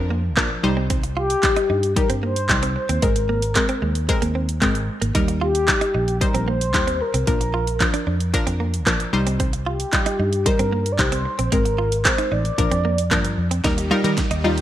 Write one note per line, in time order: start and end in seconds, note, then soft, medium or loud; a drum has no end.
0.00 0.37 F2 medium
0.00 0.22 F3 loud
0.00 0.22 D4 medium
0.00 0.22 A#4 loud
0.00 downlifter medium
0.10 0.21 A#3 medium
0.37 0.55 A#1 medium
0.37 0.64 F3 medium
0.37 0.48 A#3 medium
0.37 0.64 D4 medium
0.37 0.64 A#4 loud
0.37 kick loud
0.37 clap loud
0.50 muted clean electric guitar stroke soft
0.63 1.34 C2 medium
0.63 1.27 G3 medium
0.63 1.27 D#4 medium
0.63 1.27 C5 loud
0.77 0.88 C4 medium
0.90 1.01 C4 medium
0.90 kick loud
0.90 closed hi-hat medium
1.03 muted clean electric guitar stroke soft
1.03 closed hi-hat medium
1.17 1.28 F4 medium
1.17 1.93 G4 medium
1.30 closed hi-hat medium
1.43 1.81 G3 medium
1.43 1.81 D#4 medium
1.43 1.81 C5 medium
1.43 muted clean electric guitar stroke soft
1.43 kick loud
1.43 clap loud
1.43 closed hi-hat medium
1.56 1.68 D#4 medium
1.56 closed hi-hat soft
1.70 1.96 G2 medium
1.70 1.81 D#4 medium
1.83 closed hi-hat soft
1.96 2.34 G3 medium
1.96 2.34 D#4 medium
1.96 2.34 G4 medium
1.96 2.08 A#4 loud
1.96 muted clean electric guitar stroke soft
1.96 kick loud
1.96 closed hi-hat medium
2.10 2.51 G2 medium
2.10 2.21 C4 medium
2.10 closed hi-hat medium
2.23 2.34 A#3 medium
2.23 2.72 C5 loud
2.36 closed hi-hat medium
2.49 2.76 C2 medium
2.49 2.87 G3 medium
2.49 2.87 D#4 medium
2.49 2.88 G4 medium
2.49 kick loud
2.49 clap loud
2.49 closed hi-hat medium
2.63 2.74 C4 medium
2.63 closed hi-hat medium
2.76 3.04 C5 loud
2.76 muted clean electric guitar stroke soft
2.89 2.98 D#2 medium
2.89 3.00 C4 medium
2.89 closed hi-hat medium
3.02 3.55 G#1 loud
3.02 3.40 G#3 medium
3.02 3.13 G#3 medium
3.02 3.41 C4 medium
3.02 4.09 A#4 loud
3.02 3.41 A#4 medium
3.02 kick loud
3.02 closed hi-hat medium
3.16 muted clean electric guitar stroke soft
3.16 closed hi-hat medium
3.29 3.40 A#3 medium
3.42 closed hi-hat medium
3.55 3.94 G#3 medium
3.55 3.94 C4 medium
3.55 3.94 A#4 medium
3.55 muted clean electric guitar stroke soft
3.55 kick loud
3.55 clap loud
3.55 closed hi-hat medium
3.69 3.80 C4 medium
3.69 closed hi-hat soft
3.82 4.09 D#2 medium
3.82 3.93 G#3 medium
3.95 closed hi-hat soft
4.09 4.47 G#3 loud
4.09 4.47 C4 medium
4.09 4.47 A#4 loud
4.09 muted clean electric guitar stroke soft
4.09 kick loud
4.09 closed hi-hat medium
4.22 4.63 D#2 medium
4.22 4.33 A#3 medium
4.22 closed hi-hat medium
4.35 4.46 C4 medium
4.49 closed hi-hat medium
4.62 4.88 G#1 medium
4.62 4.73 G#3 medium
4.62 5.00 G#3 medium
4.62 5.00 C4 medium
4.62 5.00 A#4 loud
4.62 kick loud
4.62 clap loud
4.62 closed hi-hat medium
4.75 muted clean electric guitar stroke soft
4.75 closed hi-hat medium
5.02 5.11 G#1 medium
5.02 5.13 A#3 medium
5.02 closed hi-hat medium
5.15 5.67 D#2 medium
5.15 5.53 G3 medium
5.15 5.26 D#4 medium
5.15 5.53 D#4 medium
5.15 5.53 A#4 loud
5.15 kick loud
5.15 closed hi-hat medium
5.28 muted clean electric guitar stroke soft
5.28 closed hi-hat medium
5.41 5.52 F4 medium
5.41 6.17 G4 medium
5.55 closed hi-hat medium
5.68 6.06 G3 medium
5.68 6.06 D#4 medium
5.68 6.06 G4 medium
5.68 muted clean electric guitar stroke soft
5.68 kick loud
5.68 clap loud
5.68 closed hi-hat medium
5.81 5.92 D#4 medium
5.81 closed hi-hat soft
5.94 6.21 A#1 medium
5.94 6.05 D#4 medium
6.08 closed hi-hat soft
6.21 6.59 G3 medium
6.21 6.59 D#4 medium
6.21 6.46 A#4 loud
6.21 6.59 C5 medium
6.21 muted clean electric guitar stroke soft
6.21 kick loud
6.21 closed hi-hat medium
6.34 6.74 A#1 medium
6.34 6.45 C4 medium
6.34 closed hi-hat medium
6.48 6.59 A#3 medium
6.48 7.03 C5 loud
6.61 closed hi-hat medium
6.74 7.00 D#2 medium
6.74 7.12 G3 medium
6.74 7.12 D#4 medium
6.74 7.12 G4 medium
6.74 kick loud
6.74 clap loud
6.74 closed hi-hat medium
6.87 6.98 C4 medium
6.87 closed hi-hat medium
7.01 7.27 A#4 loud
7.01 muted clean electric guitar stroke soft
7.14 7.23 C2 medium
7.14 7.25 C4 medium
7.14 closed hi-hat medium
7.27 7.80 A#1 loud
7.27 7.65 F3 medium
7.27 7.38 A#3 medium
7.27 7.65 D4 medium
7.27 8.30 A#4 loud
7.27 7.65 A#4 medium
7.27 kick loud
7.27 closed hi-hat medium
7.41 muted clean electric guitar stroke soft
7.41 closed hi-hat medium
7.54 7.65 F4 medium
7.67 closed hi-hat soft
7.80 8.18 F3 medium
7.80 8.18 D4 medium
7.80 8.19 A#4 medium
7.80 muted clean electric guitar stroke soft
7.80 kick loud
7.80 clap loud
7.80 closed hi-hat medium
7.94 8.05 D4 medium
7.94 closed hi-hat soft
8.07 8.33 F2 medium
8.07 8.18 D4 medium
8.20 closed hi-hat soft
8.34 8.72 F3 loud
8.34 8.72 D4 medium
8.34 8.72 A#4 loud
8.34 muted clean electric guitar stroke soft
8.34 kick loud
8.34 closed hi-hat medium
8.47 8.87 F2 medium
8.47 8.58 C4 medium
8.47 closed hi-hat medium
8.60 8.71 A#3 medium
8.74 closed hi-hat medium
8.87 9.04 A#1 medium
8.87 9.13 F3 medium
8.87 8.98 A#3 medium
8.87 9.13 D4 medium
8.87 9.13 A#4 loud
8.87 kick loud
8.87 clap loud
8.87 closed hi-hat medium
9.00 muted clean electric guitar stroke soft
9.00 closed hi-hat medium
9.13 9.83 C2 medium
9.13 9.77 G3 medium
9.13 9.77 D#4 medium
9.13 9.77 C5 loud
9.27 9.38 C4 medium
9.27 closed hi-hat medium
9.40 9.51 C4 medium
9.40 kick loud
9.40 closed hi-hat medium
9.53 muted clean electric guitar stroke soft
9.53 closed hi-hat medium
9.66 9.77 F4 medium
9.66 10.48 G4 medium
9.80 closed hi-hat medium
9.93 10.31 G3 medium
9.93 10.31 D#4 medium
9.93 10.31 F4 medium
9.93 muted clean electric guitar stroke soft
9.93 kick loud
9.93 clap loud
9.93 closed hi-hat medium
10.06 10.17 D#4 medium
10.06 closed hi-hat soft
10.19 10.46 G2 medium
10.19 10.30 D#4 medium
10.33 closed hi-hat soft
10.46 10.84 G3 medium
10.46 10.84 D#4 medium
10.46 10.94 A#4 medium
10.46 10.84 C5 loud
10.46 muted clean electric guitar stroke soft
10.46 kick loud
10.46 closed hi-hat medium
10.59 11.00 G2 medium
10.59 10.70 C4 medium
10.59 closed hi-hat medium
10.73 10.83 A#3 medium
10.86 closed hi-hat medium
10.92 11.01 D5 medium
10.99 11.25 C2 medium
10.99 11.37 G3 medium
10.99 11.37 D#4 medium
10.99 11.37 G4 medium
10.99 11.54 C5 loud
10.99 kick loud
10.99 clap loud
10.99 closed hi-hat medium
11.12 11.23 C4 medium
11.12 closed hi-hat medium
11.26 muted clean electric guitar stroke soft
11.39 11.48 A#1 medium
11.39 11.50 C4 medium
11.39 closed hi-hat medium
11.52 12.05 G#1 loud
11.52 11.90 G#3 medium
11.52 11.63 G#3 medium
11.52 11.90 C4 medium
11.52 11.90 A#4 medium
11.52 12.05 A#4 loud
11.52 kick loud
11.52 closed hi-hat medium
11.65 muted clean electric guitar stroke soft
11.65 closed hi-hat medium
11.78 11.90 F4 medium
11.92 closed hi-hat medium
12.05 12.43 G#3 medium
12.05 12.43 C4 medium
12.05 12.43 A#4 medium
12.05 12.33 C5 loud
12.05 muted clean electric guitar stroke soft
12.05 kick loud
12.05 clap loud
12.05 closed hi-hat medium
12.18 12.29 D#4 medium
12.18 closed hi-hat soft
12.32 12.49 A1 medium
12.32 12.43 D#4 medium
12.32 13.38 D5 loud
12.45 closed hi-hat soft
12.58 12.67 A#1 loud
12.58 12.96 F3 medium
12.58 12.96 D4 medium
12.58 12.96 A#4 medium
12.58 muted clean electric guitar stroke soft
12.58 kick loud
12.58 closed hi-hat medium
12.71 13.11 F2 medium
12.71 12.82 C4 medium
12.71 closed hi-hat medium
12.85 12.96 A#3 medium
12.98 closed hi-hat medium
13.11 13.35 G2 medium
13.11 13.49 F3 medium
13.11 13.22 A#3 medium
13.11 13.49 D4 medium
13.11 13.49 A#4 loud
13.11 kick loud
13.11 clap loud
13.11 closed hi-hat medium
13.25 muted clean electric guitar stroke soft
13.25 closed hi-hat medium
13.38 13.62 F2 medium
13.51 13.62 C4 medium
13.51 closed hi-hat medium
13.64 13.91 D#2 loud
13.64 14.61 A#2 medium
13.64 14.61 D#3 medium
13.64 13.83 G3 medium
13.64 14.61 G3 medium
13.64 13.75 D#4 medium
13.64 14.61 D#4 medium
13.64 13.84 D#4 medium
13.64 14.61 G4 medium
13.64 13.84 A#4 loud
13.64 kick loud
13.64 snare soft
13.64 closed hi-hat medium
13.78 muted clean electric guitar stroke soft
13.78 closed hi-hat medium
13.91 14.00 G3 medium
13.91 14.01 D#4 medium
13.91 14.02 F4 medium
13.91 14.01 A#4 loud
14.04 14.22 D#3 medium
14.04 14.33 G3 medium
14.04 14.33 D#4 medium
14.04 14.33 A#4 loud
14.04 closed hi-hat soft
14.17 muted clean electric guitar stroke soft
14.17 kick loud
14.17 snare soft
14.17 closed hi-hat medium
14.31 14.61 D#2 medium
14.31 14.42 D#4 medium
14.31 closed hi-hat soft
14.44 14.61 G3 medium
14.44 14.55 D#4 medium
14.44 14.61 D#4 medium
14.44 14.61 F4 loud
14.58 closed hi-hat soft